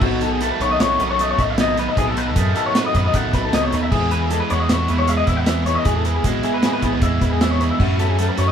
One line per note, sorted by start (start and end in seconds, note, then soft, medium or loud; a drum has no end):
0.00 0.50 B1 loud
0.00 0.46 B2 medium
0.00 0.41 B2 medium
0.00 0.41 D#3 medium
0.00 0.22 F#3 medium
0.00 0.41 B3 medium
0.00 0.21 B3 medium
0.00 0.21 D#4 loud
0.00 0.59 F#4 medium
0.00 0.22 F#4 medium
0.00 0.20 A4 loud
0.00 kick loud
0.00 crash medium
0.20 0.40 F#3 medium
0.20 0.41 B3 medium
0.20 0.42 D#4 medium
0.20 0.99 D#4 medium
0.20 0.43 A4 medium
0.20 0.32 A4 medium
0.20 closed hi-hat medium
0.32 0.42 G#4 medium
0.41 1.94 D#3 medium
0.41 0.61 F#3 medium
0.41 1.17 A3 medium
0.41 0.61 B3 medium
0.41 0.60 D#4 medium
0.41 0.51 A4 medium
0.41 0.60 A4 medium
0.41 closed hi-hat medium
0.52 0.61 B4 medium
0.60 0.76 B1 medium
0.60 1.01 B2 medium
0.60 0.99 D#3 medium
0.60 0.78 F#3 medium
0.60 0.79 B3 medium
0.60 0.80 D#4 medium
0.60 1.58 F#4 medium
0.60 0.81 A4 medium
0.60 0.71 C#5 medium
0.60 closed hi-hat medium
0.71 0.81 D#5 medium
0.79 0.96 B1 loud
0.79 0.99 F#3 medium
0.79 0.99 B3 medium
0.79 0.98 D#4 medium
0.79 0.97 A4 medium
0.79 1.00 C#5 medium
0.79 snare loud
0.79 closed hi-hat loud
0.99 1.33 B1 medium
0.99 1.58 F#2 medium
0.99 1.39 B2 medium
0.99 1.39 D#3 medium
0.99 1.18 F#3 medium
0.99 1.19 B3 medium
0.99 1.20 D#4 medium
0.99 1.38 D#4 medium
0.99 1.20 A4 medium
0.99 1.10 B4 medium
0.99 closed hi-hat medium
1.10 1.20 C#5 medium
1.19 1.39 F#3 medium
1.19 1.94 A3 medium
1.19 1.39 B3 medium
1.19 1.38 D#4 medium
1.19 1.37 A4 medium
1.19 1.29 D#5 medium
1.19 closed hi-hat medium
1.31 1.40 C#5 medium
1.38 1.87 B1 medium
1.38 1.57 F#3 medium
1.38 1.58 B3 medium
1.38 1.58 D#4 medium
1.38 1.77 D#4 medium
1.38 1.58 A4 medium
1.38 1.50 D#5 medium
1.38 kick medium
1.38 closed hi-hat medium
1.50 1.59 E5 medium
1.56 1.95 B2 medium
1.56 1.94 B2 medium
1.56 1.95 D#3 medium
1.56 1.77 F#3 medium
1.56 1.77 B3 loud
1.56 1.77 D#4 loud
1.56 1.75 A4 loud
1.56 snare loud
1.56 closed hi-hat medium
1.61 1.79 D#5 medium
1.76 1.96 F#3 medium
1.76 1.97 B3 medium
1.76 1.98 D#4 medium
1.76 1.99 D#4 medium
1.76 1.97 A4 medium
1.76 1.89 B4 medium
1.76 snare soft
1.76 closed hi-hat medium
1.89 1.98 D#5 medium
1.96 2.36 B1 loud
1.96 2.35 B2 medium
1.96 2.36 B2 medium
1.96 2.36 D#3 medium
1.96 2.17 F#3 medium
1.96 2.17 B3 medium
1.96 2.16 D#4 medium
1.96 2.06 E4 medium
1.96 2.08 G#4 loud
1.96 2.14 A4 medium
1.96 kick loud
1.96 closed hi-hat medium
2.06 2.54 F#4 medium
2.06 2.18 A4 medium
2.15 2.34 F#3 medium
2.15 2.36 B3 medium
2.15 2.36 D#4 medium
2.15 2.94 D#4 medium
2.15 2.36 A4 medium
2.15 2.28 B4 medium
2.15 snare soft
2.15 closed hi-hat medium
2.28 2.37 A4 medium
2.35 2.52 F#2 medium
2.35 3.89 D#3 medium
2.35 2.55 F#3 medium
2.35 3.13 A3 medium
2.35 2.55 B3 medium
2.35 2.55 D#4 medium
2.35 2.56 G#4 medium
2.35 2.53 A4 medium
2.35 kick loud
2.35 closed hi-hat loud
2.55 2.95 B2 medium
2.55 2.95 D#3 medium
2.55 2.74 F#3 medium
2.55 2.76 B3 medium
2.55 2.77 D#4 medium
2.55 3.53 F#4 medium
2.55 2.76 A4 medium
2.55 2.66 A4 medium
2.55 closed hi-hat medium
2.66 2.76 C#5 medium
2.75 2.95 F#3 medium
2.75 2.95 B3 medium
2.75 2.94 D#4 medium
2.75 2.93 A4 medium
2.75 2.85 B4 medium
2.75 snare loud
2.75 closed hi-hat loud
2.86 2.96 D#5 medium
2.94 3.52 F#2 medium
2.94 3.14 F#2 loud
2.94 3.34 B2 medium
2.94 3.34 D#3 medium
2.94 3.12 F#3 medium
2.94 3.14 B3 medium
2.94 3.33 D#4 medium
2.94 3.15 D#4 medium
2.94 3.15 A4 medium
2.94 3.05 B4 medium
2.94 kick medium
2.94 closed hi-hat medium
3.06 3.15 D#5 medium
3.13 3.30 B1 medium
3.13 3.34 F#3 medium
3.13 3.89 A3 medium
3.13 3.34 B3 medium
3.13 3.33 D#4 medium
3.13 3.32 A4 medium
3.13 3.34 F#5 medium
3.13 kick loud
3.13 snare soft
3.13 closed hi-hat medium
3.33 3.51 B1 medium
3.33 3.52 F#3 medium
3.33 3.53 B3 medium
3.33 3.72 D#4 medium
3.33 3.53 D#4 medium
3.33 3.53 A4 medium
3.33 3.44 B4 medium
3.33 kick medium
3.33 snare soft
3.33 closed hi-hat medium
3.45 3.54 A4 medium
3.52 3.70 C#2 medium
3.52 3.90 B2 medium
3.52 3.89 B2 medium
3.52 3.90 D#3 medium
3.52 3.73 F#3 medium
3.52 3.73 B3 medium
3.52 3.72 D#4 medium
3.52 3.71 A4 medium
3.52 3.64 D#5 medium
3.52 snare loud
3.52 closed hi-hat loud
3.64 3.73 C#5 medium
3.72 3.90 D#2 medium
3.72 3.91 F#3 medium
3.72 3.92 B3 medium
3.72 3.94 D#4 medium
3.72 3.93 D#4 medium
3.72 3.90 A4 medium
3.72 3.82 B4 medium
3.72 snare soft
3.72 closed hi-hat medium
3.83 3.92 E5 medium
3.90 5.47 E2 medium
3.90 4.40 E2 loud
3.90 4.30 E3 medium
3.90 4.12 G#3 medium
3.90 4.12 B3 loud
3.90 4.10 E4 loud
3.90 4.11 G#4 medium
3.90 4.50 G#4 medium
3.90 kick loud
3.90 crash medium
4.11 4.31 G#3 medium
4.11 4.32 B3 medium
4.11 4.33 E4 medium
4.11 4.21 B4 medium
4.11 closed hi-hat medium
4.21 4.30 G#4 medium
4.30 6.25 E3 medium
4.30 4.52 E3 medium
4.30 5.08 G#3 medium
4.30 4.51 G#3 medium
4.30 4.50 B3 medium
4.30 4.50 E4 medium
4.30 4.41 A4 medium
4.30 closed hi-hat medium
4.40 4.50 B4 medium
4.50 4.67 E2 medium
4.50 4.69 E3 medium
4.50 4.70 G#3 medium
4.50 4.71 B3 medium
4.50 4.72 E4 medium
4.50 5.47 F#4 medium
4.50 4.60 C#5 medium
4.50 closed hi-hat medium
4.60 4.69 D#5 medium
4.69 4.86 E2 loud
4.69 4.90 E3 medium
4.69 4.89 G#3 medium
4.69 4.88 B3 medium
4.69 4.88 E4 medium
4.69 4.89 C#5 medium
4.69 snare loud
4.69 closed hi-hat loud
4.88 5.22 E2 medium
4.88 5.84 B2 medium
4.88 5.07 E3 medium
4.88 5.08 G#3 medium
4.88 5.08 B3 medium
4.88 5.09 E4 medium
4.88 4.98 B4 medium
4.88 closed hi-hat medium
4.99 5.08 C#5 medium
5.07 5.46 E3 medium
5.07 5.29 G#3 medium
5.07 6.25 G#3 medium
5.07 5.27 B3 medium
5.07 5.27 E4 medium
5.07 5.17 E5 medium
5.07 closed hi-hat loud
5.17 5.26 D#5 medium
5.27 5.76 E2 loud
5.27 5.46 G#3 medium
5.27 5.46 B3 medium
5.27 5.48 E4 medium
5.27 5.37 E5 medium
5.27 kick medium
5.27 closed hi-hat medium
5.37 5.47 F#5 medium
5.46 5.86 E2 medium
5.46 5.85 E3 medium
5.46 5.67 G#3 medium
5.46 5.65 B3 loud
5.46 5.65 E4 loud
5.46 5.87 G#4 medium
5.46 5.66 E5 medium
5.46 snare loud
5.46 closed hi-hat loud
5.65 5.86 G#3 medium
5.65 5.86 B3 medium
5.65 5.84 D#4 medium
5.65 5.87 E4 medium
5.65 5.75 C#5 medium
5.65 closed hi-hat medium
5.75 5.85 D#5 medium
5.85 6.24 E2 loud
5.85 7.41 E2 medium
5.85 6.23 E3 medium
5.85 6.07 G#3 medium
5.85 6.05 B3 medium
5.85 6.04 E4 medium
5.85 5.95 G#4 medium
5.85 6.44 G#4 medium
5.85 kick loud
5.85 closed hi-hat loud
5.96 6.06 A4 medium
6.05 6.24 G#3 medium
6.05 6.24 B3 medium
6.05 6.26 E4 medium
6.05 6.15 B4 medium
6.05 closed hi-hat medium
6.16 6.26 G#4 medium
6.24 6.41 B1 medium
6.24 6.45 E3 medium
6.24 7.85 E3 medium
6.24 6.44 G#3 medium
6.24 7.03 G#3 medium
6.24 6.42 B3 medium
6.24 6.42 E4 medium
6.24 6.44 F#4 medium
6.24 kick loud
6.24 snare soft
6.24 closed hi-hat loud
6.43 6.62 E3 medium
6.43 6.63 G#3 medium
6.43 6.63 B3 medium
6.43 6.64 E4 medium
6.43 6.54 E4 medium
6.43 6.54 G#4 medium
6.43 closed hi-hat medium
6.54 7.41 F#4 medium
6.54 6.64 B4 medium
6.63 6.84 E3 medium
6.63 6.83 G#3 medium
6.63 6.81 B3 medium
6.63 6.81 E4 medium
6.63 6.73 G#4 medium
6.63 snare loud
6.63 closed hi-hat loud
6.73 6.83 B4 medium
6.81 7.02 B1 loud
6.81 7.78 B2 medium
6.81 7.00 E3 medium
6.81 7.01 G#3 medium
6.81 7.01 B3 medium
6.81 7.03 E4 medium
6.81 6.93 G#4 medium
6.81 kick medium
6.81 closed hi-hat medium
6.93 7.03 B4 medium
7.01 7.18 E2 loud
7.01 7.40 E3 medium
7.01 7.22 G#3 medium
7.01 7.85 G#3 medium
7.01 7.20 B3 medium
7.01 7.20 E4 medium
7.01 7.22 E5 medium
7.01 kick loud
7.01 closed hi-hat medium
7.20 7.70 E2 medium
7.20 7.41 G#3 medium
7.20 7.41 B3 medium
7.20 7.42 E4 medium
7.20 7.31 B4 medium
7.20 kick medium
7.20 snare soft
7.20 closed hi-hat medium
7.32 7.41 G#4 medium
7.40 7.80 E2 medium
7.40 7.78 E3 medium
7.40 7.62 G#3 loud
7.40 7.60 B3 loud
7.40 7.59 E4 loud
7.40 7.82 G#4 medium
7.40 7.51 E5 medium
7.40 snare loud
7.40 closed hi-hat medium
7.51 7.61 C#5 medium
7.60 7.79 G#3 medium
7.60 7.79 B3 medium
7.60 7.78 D#4 medium
7.60 7.81 E4 medium
7.60 7.70 B4 medium
7.60 snare soft
7.60 closed hi-hat medium
7.71 7.80 E5 medium
7.79 8.28 F#2 loud
7.79 8.52 F#2 medium
7.79 8.16 F#3 medium
7.79 7.99 A3 medium
7.79 7.99 C#4 medium
7.79 7.99 F#4 medium
7.79 7.97 F#4 medium
7.79 kick loud
7.79 crash medium
7.83 8.39 E4 medium
7.98 8.18 A3 medium
7.98 8.09 B3 medium
7.98 8.19 C#4 medium
7.98 8.19 F#4 medium
7.98 8.09 A4 medium
7.98 closed hi-hat medium
8.09 8.52 C#4 medium
8.09 8.18 G#4 medium
8.18 8.38 F#3 medium
8.18 8.52 F#3 medium
8.18 8.37 A3 medium
8.18 8.52 A3 medium
8.18 8.37 C#4 medium
8.18 8.35 F#4 medium
8.18 8.28 A4 medium
8.18 closed hi-hat medium
8.29 8.38 B4 medium
8.36 8.52 F#2 medium
8.36 8.52 F#3 medium
8.36 8.52 A3 medium
8.36 8.52 C#4 medium
8.36 8.52 E4 medium
8.36 8.52 F#4 medium
8.36 8.47 C#5 medium
8.36 closed hi-hat medium
8.48 8.52 D#5 medium